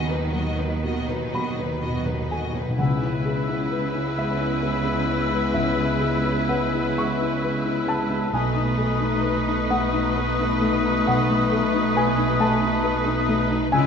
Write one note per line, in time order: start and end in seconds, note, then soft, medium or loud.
0.00 2.54 D#2 medium
0.00 2.74 D#2 soft
0.00 0.09 B2 soft
0.00 2.54 D#3 medium
0.00 2.84 D#3 soft
0.00 0.84 B4 medium
0.00 1.31 F#5 medium
0.08 0.35 F#3 soft
0.08 0.34 D#4 soft
0.08 0.49 B4 soft
0.08 0.36 B4 soft
0.18 0.24 B2 soft
0.26 0.32 B2 soft
0.33 0.74 F#3 soft
0.33 2.31 F#3 soft
0.33 0.60 B3 soft
0.33 0.59 F#4 soft
0.33 0.60 D#5 soft
0.42 0.49 B2 soft
0.51 0.58 B2 soft
0.58 0.66 B2 soft
0.58 0.85 F#3 soft
0.58 0.84 D#4 soft
0.58 1.09 F#4 soft
0.58 0.99 B4 soft
0.58 0.85 B4 soft
0.67 0.75 B2 soft
0.83 0.90 B2 soft
0.83 1.08 B3 soft
0.83 1.07 F#4 soft
0.83 1.24 F#4 soft
0.83 1.83 B4 soft
0.83 1.08 D#5 soft
1.00 1.07 B2 soft
1.08 1.16 B2 soft
1.08 1.35 F#3 soft
1.08 1.34 D#4 soft
1.08 1.59 F#4 soft
1.08 1.49 B4 soft
1.08 1.35 B4 soft
1.26 1.33 B2 soft
1.33 1.40 B2 soft
1.33 1.59 B3 soft
1.33 1.73 F#4 soft
1.33 1.58 F#4 soft
1.33 1.59 D#5 soft
1.33 2.83 F#5 soft
1.33 2.28 B5 medium
1.41 1.49 B2 soft
1.50 1.57 B2 soft
1.58 1.64 B2 soft
1.58 1.83 F#3 soft
1.58 1.83 D#4 soft
1.58 2.07 F#4 soft
1.58 1.97 B4 soft
1.58 1.83 B4 soft
1.66 1.73 B2 soft
1.74 1.81 B2 soft
1.82 1.88 B2 soft
1.82 2.06 B3 soft
1.82 2.21 F#4 soft
1.82 2.06 F#4 soft
1.82 3.71 B4 soft
1.82 2.05 D#5 soft
1.90 1.96 B2 medium
1.97 2.04 B2 medium
2.05 2.12 B2 medium
2.05 2.32 F#3 soft
2.05 2.31 D#4 soft
2.05 2.83 F#4 soft
2.05 2.46 B4 soft
2.05 2.31 B4 soft
2.14 2.21 B2 medium
2.22 2.28 B2 medium
2.29 2.36 B2 medium
2.29 2.83 F#3 soft
2.29 2.56 B3 soft
2.29 2.56 F#4 soft
2.29 2.56 A4 soft
2.29 2.55 D#5 soft
2.29 2.76 G#5 medium
2.37 2.44 B2 medium
2.45 2.52 B2 medium
2.53 2.60 B2 medium
2.53 2.80 F#3 soft
2.53 2.79 D#4 soft
2.53 2.83 D#4 soft
2.53 2.79 B4 soft
2.53 2.77 B4 soft
2.61 2.67 B2 medium
2.69 2.76 B2 medium
2.78 5.50 C#2 soft
2.78 8.29 C#2 soft
2.78 4.14 C#3 medium
2.78 8.29 C#3 medium
2.78 5.54 C#3 soft
2.78 8.35 G#3 soft
2.78 8.30 G#3 medium
2.78 8.30 B3 medium
2.78 8.30 E4 soft
2.78 8.30 E4 medium
2.78 8.29 B4 medium
2.78 4.13 F#5 medium
2.78 8.30 E6 medium
3.02 5.77 C#4 soft
3.02 3.40 E4 soft
3.25 5.31 G#3 soft
3.25 3.63 G#4 soft
3.49 3.86 E4 soft
3.49 6.25 E4 soft
3.71 4.08 B4 soft
3.71 5.08 B4 soft
3.95 4.31 E4 soft
4.18 4.54 G#3 soft
4.18 4.63 E5 soft
4.18 5.51 E5 medium
4.41 4.77 E4 soft
4.63 4.99 B4 soft
4.63 6.98 E5 soft
4.85 5.22 E4 soft
5.08 5.45 G#3 soft
5.31 6.00 G#3 soft
5.31 5.68 E4 soft
5.54 8.29 C#2 soft
5.54 8.38 C#3 medium
5.54 6.45 E5 medium
5.77 6.15 G#3 soft
5.77 8.37 C#4 soft
6.00 8.11 G#3 soft
6.00 6.39 G#4 soft
6.25 6.64 E4 soft
6.25 8.38 E4 soft
6.49 6.88 B4 soft
6.49 7.88 B4 soft
6.49 6.94 F#5 medium
6.74 7.12 E4 soft
6.98 7.35 G#3 soft
6.98 7.43 E5 medium
6.98 7.85 C#6 medium
7.21 7.57 E4 soft
7.44 7.80 B4 soft
7.44 8.37 E5 soft
7.66 8.02 E4 soft
7.87 8.24 G#3 soft
7.87 9.23 B4 medium
7.87 8.30 A5 medium
8.10 8.37 G#3 soft
8.10 8.33 E4 soft
8.33 11.03 B1 medium
8.33 13.69 B1 medium
8.33 13.69 B2 medium
8.33 11.06 B2 medium
8.33 13.55 A3 medium
8.33 13.56 A3 medium
8.33 13.69 A3 medium
8.33 13.69 D#4 soft
8.33 13.55 D#4 medium
8.33 13.55 B4 medium
8.33 13.69 B4 medium
8.33 9.67 G#5 medium
8.33 13.49 D#6 medium
8.55 11.28 F#3 soft
8.55 8.92 D#4 soft
8.78 10.84 A3 soft
8.78 9.15 A4 medium
9.00 9.37 D#4 soft
9.00 11.73 D#4 soft
9.24 9.61 B4 medium
9.24 10.61 B4 soft
9.47 9.84 D#4 soft
9.47 9.92 A4 soft
9.70 10.07 A3 soft
9.70 10.16 D#5 medium
9.70 11.03 F#5 medium
9.93 10.30 D#4 medium
9.93 10.38 A4 soft
10.16 10.53 B4 soft
10.16 12.40 D#5 medium
10.39 10.75 D#4 soft
10.39 12.17 A4 medium
10.62 10.98 A3 soft
10.62 11.95 B4 medium
10.85 11.51 A3 soft
10.85 11.20 D#4 soft
11.07 13.69 B1 medium
11.07 13.77 B2 medium
11.07 11.92 F#5 medium
11.29 13.76 F#3 soft
11.29 11.65 A3 soft
11.51 13.50 A3 medium
11.51 11.87 A4 medium
11.74 12.10 D#4 medium
11.74 13.76 D#4 soft
11.96 12.31 B4 medium
11.96 12.38 G#5 medium
12.18 12.53 D#4 medium
12.18 12.61 A4 medium
12.40 12.75 A3 medium
12.40 12.83 D#5 medium
12.40 12.82 A5 medium
12.62 12.98 D#4 medium
12.62 13.06 A4 medium
12.84 13.20 B4 medium
12.84 13.76 D#5 medium
13.06 13.42 D#4 medium
13.06 13.76 A4 medium
13.29 13.64 A3 medium
13.29 13.87 B4 medium
13.51 13.76 A3 medium
13.51 13.73 D#4 medium
13.72 13.87 C#2 medium
13.72 13.87 C#3 medium
13.72 13.87 G#3 medium
13.72 13.87 E4 medium
13.72 13.87 B4 medium
13.72 13.87 G#5 medium
13.72 13.87 E6 medium